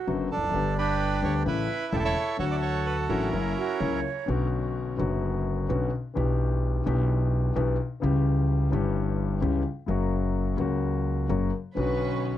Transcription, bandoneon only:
0.31 0.77 D4 medium
0.31 0.74 A4 medium
0.78 1.43 D4 medium
0.78 1.43 G4 medium
0.78 1.21 B4 medium
1.24 1.34 C#5 medium
1.47 2.36 E4 medium
1.47 1.90 B4 medium
1.93 1.98 G4 medium
1.93 1.96 A4 medium
1.99 2.04 A4 medium
2.05 2.37 A4 medium
2.05 2.37 C#5 medium
2.05 2.37 E5 medium
2.39 3.29 F#4 medium
2.39 3.29 A4 medium
2.39 2.45 C#5 medium
2.51 2.56 D5 medium
2.62 2.86 C#5 medium
2.86 2.97 B4 medium
3.09 4.00 C#4 medium
3.09 4.01 E4 soft
3.09 4.00 A#4 medium

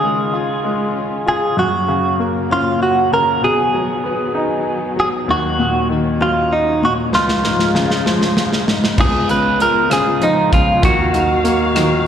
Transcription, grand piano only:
0.00 1.53 C#3 soft
0.00 0.63 G#3 soft
0.33 1.25 F4 soft
0.64 1.54 G#3 soft
1.26 1.56 F4 soft
1.57 3.38 F#2 medium
1.88 3.08 C#3 soft
2.19 3.39 A#3 soft
2.50 3.40 C#4 soft
3.12 3.42 C#3 soft
3.42 5.23 B2 medium
3.74 4.93 F#3 soft
4.04 5.24 B3 soft
4.35 5.25 D#4 medium
4.96 5.27 F#3 soft
5.28 7.09 D#2 medium
5.59 6.78 A#2 soft
5.89 7.09 D#3 soft
6.21 7.10 F#3 soft
6.82 7.12 A#2 soft
7.13 8.94 C#2 medium
7.44 8.63 G#2 soft
7.75 8.94 C#3 soft
8.06 8.95 F3 soft
8.67 8.97 G#2 soft
8.98 10.79 C#2 medium
9.29 9.88 C#3 soft
9.59 10.79 G#3 soft
9.90 10.50 C#3 soft
10.21 10.81 F3 soft
10.51 10.82 C#3 soft
10.82 12.07 D#2 medium
11.13 11.74 D#3 medium
11.44 12.07 A#3 soft
11.75 12.07 D#3 medium

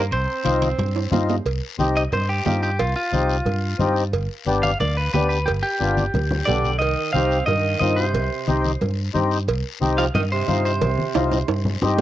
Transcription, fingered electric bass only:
0.00 0.13 G2 medium
0.12 0.25 C2 loud
0.46 0.72 C2 medium
0.79 1.06 G2 loud
1.12 1.39 G2 medium
1.45 1.59 C2 medium
1.79 2.06 C2 medium
2.13 2.39 G2 loud
2.46 2.81 G2 medium
2.80 2.93 C2 medium
3.13 3.40 C2 medium
3.46 3.73 G2 loud
3.79 4.15 G2 medium
4.13 4.27 G1 loud
4.47 4.73 G1 medium
4.81 5.07 D2 loud
5.14 5.49 D2 medium
5.47 5.61 G1 medium
5.81 6.07 G1 medium
6.14 6.41 D2 medium
6.47 6.81 B1 medium
6.81 6.94 C2 loud
7.14 7.41 C2 medium
7.47 7.74 G2 medium
7.81 8.16 G2 medium
8.14 8.28 C2 loud
8.48 8.75 C2 medium
8.81 9.08 G2 loud
9.15 9.49 G2 medium
9.48 9.61 C2 loud
9.81 10.08 C2 medium
10.15 10.41 G2 loud
10.48 10.83 G2 medium
10.82 10.95 C2 loud
11.15 11.42 C2 medium
11.49 11.75 G2 medium
11.83 12.01 G2 medium

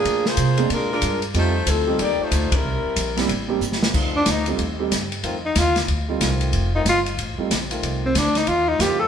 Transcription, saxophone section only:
0.00 0.24 F3 medium
0.00 0.24 A#3 medium
0.00 0.24 D4 medium
0.00 0.24 G#4 medium
0.26 0.67 A#3 medium
0.26 0.67 F4 medium
0.26 0.67 G#4 medium
0.26 0.67 C5 medium
0.70 0.91 G#3 medium
0.70 0.91 D4 medium
0.70 0.91 F4 medium
0.70 0.72 A4 medium
0.70 0.91 A#4 medium
0.92 1.21 G#3 medium
0.92 1.21 D4 medium
0.92 1.21 F4 medium
0.92 1.21 A#4 medium
1.37 1.66 A3 medium
1.37 1.66 D#4 medium
1.37 1.66 F4 medium
1.37 1.66 C5 medium
1.69 2.00 F3 medium
1.69 2.00 C4 medium
1.69 2.00 D#4 medium
1.69 2.00 A4 medium
2.01 2.19 A#3 medium
2.01 2.19 D#4 medium
2.01 2.19 G4 medium
2.01 2.19 D5 medium
2.21 2.53 A3 medium
2.21 2.53 D#4 medium
2.21 2.53 F4 medium
2.21 2.53 C5 medium
2.54 3.18 G3 medium
2.54 3.18 C4 medium
2.54 3.18 E4 medium
2.54 3.18 A#4 medium

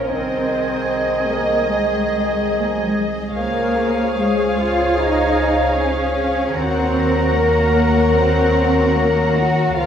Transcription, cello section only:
0.07 1.28 C4 medium
1.30 1.71 A#3 medium
1.71 2.58 G#3 soft
2.60 2.69 A#3 soft
2.69 2.78 G#3 soft
2.79 2.88 F#3 medium
2.87 2.96 G#3 soft
3.37 4.13 A#3 medium
4.18 4.58 G#3 medium
4.56 4.97 F4 medium
4.98 5.79 D#4 medium
5.78 6.55 C#4 medium
6.55 7.36 C4 medium
7.37 8.14 A#3 medium
8.15 8.94 C4 medium
8.95 9.36 A#3 medium
9.36 9.77 F#4 medium
9.77 9.86 F4 medium

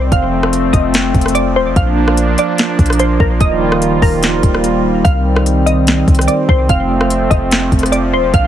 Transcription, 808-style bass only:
0.00 0.11 C2 loud
0.12 0.71 F1 loud
0.73 1.13 F1 loud
1.15 1.57 F1 loud
1.56 1.67 D#1 loud
1.66 1.76 F1 loud
1.76 2.35 A#1 loud
2.79 3.18 A#1 loud
3.20 3.40 A#1 loud
3.41 4.00 D#1 loud
4.02 4.42 D#1 loud
4.43 5.02 D#1 loud
5.05 6.04 C2 loud
6.08 6.27 C2 loud
6.49 6.69 C2 loud
6.69 7.29 F1 loud
7.31 7.70 F1 loud
7.72 8.15 F1 loud
8.13 8.25 D#1 loud
8.23 8.33 F1 loud
8.34 8.47 A#1 loud

